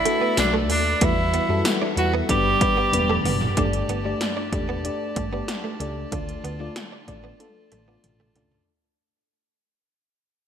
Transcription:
Already playing: B2 A3 D4 E4 F#4 A4 B4 D5 B5
0.05 A3 D4 F#4 A4, closed hi-hat
0.21 B3
0.37 B1 A3 D4 F#4 D5, muted clean electric guitar stroke, snare, closed hi-hat, tambourine
0.54 A3
0.69 D#2 A3 D4, open hi-hat
1.01 E2 E3 G3 A3 E4 F#4 B4 E5 F#5, kick, closed hi-hat
1.34 B3, closed hi-hat
1.49 F#2 G3 E4 F#4 A4, muted clean electric guitar stroke
1.65 snare, closed hi-hat, tambourine
1.82 D4
1.97 E2 G3 E4 F#4 B4, muted clean electric guitar stroke, closed hi-hat
2.14 B3
2.29 G1 G2 G3 B3 D4 G4 B4 D5 B5, muted clean electric guitar stroke, kick, closed hi-hat
2.60 G3 B3 D4 B4, kick, closed hi-hat
2.77 B3
2.92 E1 G3 B3 D4 B4, muted clean electric guitar stroke, closed hi-hat, high tom
3.09 A3, mid tom
3.24 F#1 B3, mid tom, open hi-hat
3.41 floor tom
3.57 G1 G2 A3 D4 G4 D5 A5, kick, closed hi-hat
3.73 closed hi-hat
3.88 G1 B3, closed hi-hat
4.04 A3 D4 G4 D5, muted clean electric guitar stroke
4.21 snare, closed hi-hat
4.37 D4
4.52 E1 A3 D4 G4 D5, muted clean electric guitar stroke, kick, closed hi-hat
4.69 B3
4.84 A3 D4 G4 D5, muted clean electric guitar stroke, closed hi-hat
5.16 G1 A3, kick, closed hi-hat
5.32 A3 B3 D4 G4 D5
5.48 muted clean electric guitar stroke, snare, closed hi-hat
5.64 A3
5.80 C#2 A3 D4 G4 D5, closed hi-hat
6.12 D2 D3 A3 D4 F4 D5, kick, closed hi-hat
6.29 closed hi-hat
6.44 D2 B3, closed hi-hat
6.60 A3 D4 F4 D5, muted clean electric guitar stroke
6.76 snare, closed hi-hat
6.92 D4
7.07 A1 A3 D4 F4 D5, muted clean electric guitar stroke, kick, closed hi-hat
7.24 B3
7.39 A3 D4 F4 A4, muted clean electric guitar stroke, closed hi-hat, high tom
7.72 A1 A3, closed hi-hat, mid tom
7.87 A3 B3 D4 F4 D5
8.04 A1, muted clean electric guitar stroke, closed hi-hat, mid tom
8.20 A3, mid tom
8.35 C#2 A3 D4 F4 D5, closed hi-hat, floor tom
8.51 floor tom

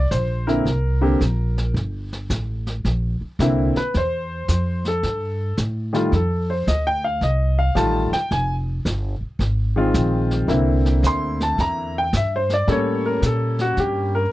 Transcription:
Already playing: D5
0.11 A#1 C5, snare, hi-hat pedal
0.47 D3 A#3 C4 E4 A#4, snare
0.66 C2, brush sweep, snare
1.01 D3 A#3 C4 G4
1.21 A#1, snare, hi-hat pedal
1.58 snare
1.74 G1, brush sweep, snare
2.13 snare
2.30 A1, snare, hi-hat pedal
2.67 snare
2.85 A#1, brush sweep, snare
3.21 muted upright bass stroke
3.39 C2 D3 A#3 C4 E4, snare, hi-hat pedal
3.76 B4, snare
3.94 E2 C5, brush sweep, snare
4.48 F2, snare, hi-hat pedal
4.85 A4, snare
5.03 G2, brush sweep, snare
5.57 A2, snare, hi-hat pedal
5.93 D#3 G3 A3 F4, snare
6.12 F2 A4, brush sweep, snare
6.50 C5
6.67 D2 D#5, snare, hi-hat pedal
6.87 G5
7.04 F5
7.21 C2 D#5, brush sweep, snare
7.59 F5
7.75 A1 D#3 G3 A3 F4 A5, snare, hi-hat pedal
8.12 G5, muted upright bass stroke, snare
8.31 F1 G#5, brush sweep, snare
8.85 G1, snare, hi-hat pedal
9.21 muted upright bass stroke
9.39 G#1, brush sweep, snare
9.76 D#3 G#3 C4 F4
9.94 A#1, snare, hi-hat pedal
10.31 snare
10.48 C2 D3 A#3 C4 E4, brush sweep, snare
10.85 snare
11.03 D2 C6, snare, hi-hat pedal
11.40 A5, snare
11.58 E2 A#5, brush sweep, snare
11.98 G5
12.13 G2 E5, snare, hi-hat pedal
12.36 C5
12.49 snare
12.54 D5
12.67 A2 G3 A#3 C#4 A4, brush sweep, snare
12.72 C#5
13.06 A#4
13.22 A#2 A4, snare, hi-hat pedal
13.59 F#4, snare
13.77 G2 G4, brush sweep, snare
14.15 A#4

